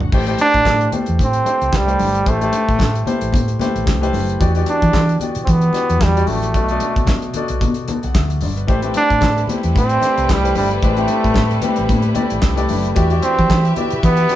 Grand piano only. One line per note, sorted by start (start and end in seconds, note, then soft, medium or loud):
0.00 0.14 D3 medium
0.00 0.13 A3 medium
0.00 0.14 C4 medium
0.00 0.13 E4 medium
0.00 0.14 F#4 medium
0.13 0.22 A3 medium
0.13 0.22 E4 medium
0.13 0.22 G4 medium
0.13 0.22 B4 medium
0.13 0.23 C5 loud
0.27 0.68 A3 medium
0.27 0.68 E4 medium
0.27 0.68 G4 medium
0.27 0.68 B4 medium
0.27 0.68 C5 loud
0.91 1.26 A3 medium
0.91 1.26 E4 medium
0.91 1.27 G4 medium
0.91 1.27 B4 medium
0.91 1.27 C5 medium
1.44 1.70 A3 medium
1.44 1.71 E4 medium
1.44 1.71 G4 medium
1.44 1.71 B4 medium
1.44 1.71 C5 medium
1.86 2.12 A3 medium
1.86 2.12 E4 medium
1.86 2.13 G4 medium
1.86 2.13 B4 medium
1.86 2.13 C5 medium
2.26 2.35 A3 medium
2.26 2.35 E4 medium
2.26 2.36 G4 medium
2.26 2.36 B4 medium
2.26 2.36 C5 medium
2.41 2.82 A3 medium
2.41 2.82 E4 medium
2.41 2.82 G4 medium
2.41 2.82 B4 medium
2.41 2.82 C5 medium
3.06 3.41 A3 medium
3.06 3.41 E4 medium
3.06 3.41 G4 medium
3.06 3.41 B4 medium
3.06 3.41 C5 loud
3.60 3.85 A3 medium
3.60 3.86 E4 medium
3.60 3.86 G4 medium
3.60 3.86 B4 medium
3.60 3.86 C5 medium
4.01 4.26 A3 medium
4.01 4.27 E4 medium
4.01 4.27 G4 medium
4.01 4.27 B4 medium
4.01 4.27 C5 loud
4.40 4.49 E3 medium
4.40 4.49 B3 medium
4.40 4.50 F#4 medium
4.40 4.50 G4 medium
4.40 4.50 D5 loud
4.55 4.96 E3 medium
4.55 4.96 B3 medium
4.55 4.96 F#4 medium
4.55 4.96 G4 medium
4.55 4.97 D5 medium
5.21 5.55 E3 medium
5.21 5.55 B3 medium
5.21 5.56 F#4 medium
5.21 5.56 G4 medium
5.21 5.56 D5 medium
5.73 5.99 E3 medium
5.73 5.99 B3 medium
5.73 5.99 F#4 medium
5.73 6.00 G4 medium
5.73 6.00 D5 medium
6.16 6.41 E3 medium
6.16 6.41 B3 medium
6.16 6.41 F#4 medium
6.16 6.41 G4 medium
6.16 6.42 D5 medium
6.55 6.64 B2 medium
6.55 6.64 B3 medium
6.55 6.64 F#4 medium
6.55 6.64 A4 medium
6.55 6.65 D5 medium
6.71 7.11 B2 medium
6.71 7.11 B3 medium
6.71 7.11 F#4 medium
6.71 7.11 A4 medium
6.71 7.11 D5 loud
7.35 7.69 B2 medium
7.35 7.70 B3 medium
7.35 7.70 F#4 medium
7.35 7.70 A4 medium
7.35 7.70 D5 medium
7.90 8.03 A5 medium
8.04 8.15 F#5 medium
8.15 8.41 E5 medium
8.42 8.56 D5 medium
8.57 8.67 B4 medium
8.67 8.77 A3 medium
8.67 8.77 E4 medium
8.67 8.78 G4 medium
8.67 8.78 B4 medium
8.67 8.78 C5 loud
8.82 9.23 A3 medium
8.82 9.24 C4 medium
8.82 9.24 E4 medium
8.82 9.24 G4 medium
8.82 9.24 B4 medium
9.48 9.83 A3 medium
9.48 9.83 C4 medium
9.48 9.83 E4 medium
9.48 9.83 G4 medium
9.48 9.83 B4 medium
10.01 10.27 A3 medium
10.01 10.27 E4 medium
10.01 10.27 G4 medium
10.01 10.27 B4 medium
10.01 10.27 C5 medium
10.42 10.68 A3 medium
10.42 10.69 E4 medium
10.42 10.69 G4 medium
10.42 10.69 B4 medium
10.42 10.69 C5 medium
10.83 10.92 A3 medium
10.83 10.92 E4 medium
10.83 10.92 G4 medium
10.83 10.92 B4 medium
10.83 10.92 C5 medium
10.97 11.38 A3 medium
10.97 11.38 C4 medium
10.97 11.38 E4 medium
10.97 11.38 G4 medium
10.97 11.38 B4 medium
11.61 11.96 A3 medium
11.61 11.98 C4 medium
11.61 11.97 E4 medium
11.61 11.97 G4 medium
11.61 11.97 B4 medium
12.14 12.40 A3 medium
12.14 12.41 E4 medium
12.14 12.41 G4 medium
12.14 12.41 B4 medium
12.14 12.41 D5 loud
12.56 12.82 A3 loud
12.56 12.82 E4 medium
12.56 12.82 G4 medium
12.56 12.83 B4 medium
12.56 12.83 D5 loud
12.95 13.05 E3 medium
12.95 13.05 E4 medium
12.95 13.05 F#4 medium
12.95 13.05 G4 medium
12.95 13.05 D5 medium
13.09 13.51 E3 medium
13.09 13.51 E4 medium
13.09 13.52 F#4 medium
13.09 13.52 G4 medium
13.09 13.52 D5 medium
13.75 14.10 E3 medium
13.75 14.11 E4 medium
13.75 14.11 F#4 medium
13.75 14.11 G4 medium
13.75 14.11 D5 medium
14.29 14.36 E3 medium
14.29 14.36 E4 medium
14.29 14.36 F#4 medium
14.29 14.36 G4 medium
14.29 14.36 D5 medium